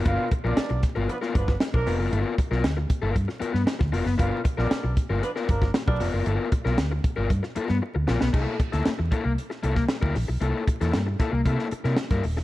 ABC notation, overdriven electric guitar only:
X:1
M:4/4
L:1/16
Q:1/4=116
K:C
V:1 name="Overdriven electric guitar"
[B,F^A]2 z [B,FA] z3 [B,FA]2 [B,FA]2 z3 [B,FB] [B,FA] | [B,F^A]2 z [B,FA] z3 [B,FA]2 z [B,FA]2 z2 [B,FA]2 | [B,F^A]2 z [B,FA] z3 [B,FA]2 [B,FA]2 z3 [B,FB] [B,FA] | [B,F^A]2 z [B,FA] z3 [B,FA]2 z [B,FA]2 z2 [B,FA]2 |
[_B,EA]2 z [B,EA] z2 [B,EA]2 z2 [B,EA]2 z [B,E_B]2 z | [_B,EA]2 z [B,EA] z2 [B,EA]2 [B,EA]2 z [B,E_B] z [B,EB]2 z |]